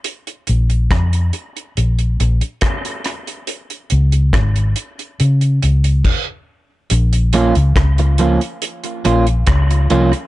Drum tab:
CC |----------------|------------x---|----------------|
HH |xxxxxxxxxxxxxxxx|xxxxxxxxxxxx----|xxxxxxxxxxxxxxxx|
SD |----r-------r-r-|----r-----------|----r-------r---|
BD |----o-------o---|----o-------o---|----o-------o---|